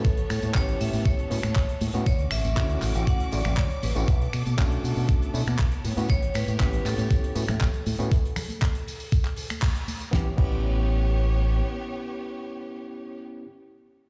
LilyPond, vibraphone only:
\new Staff \with { instrumentName = "Vibraphone" } { \time 4/4 \key a \mixolydian \tempo 4 = 119 a'8 a'8 cis''8 e''8 cis''4. r8 | cis''8 e''4 r8 fis''8 d''8 cis''8 b'8~ | b'8 r2. r8 | cis''8 b'8 b'8 a'2~ a'8~ |
a'2. r4 | r1 | r1 | }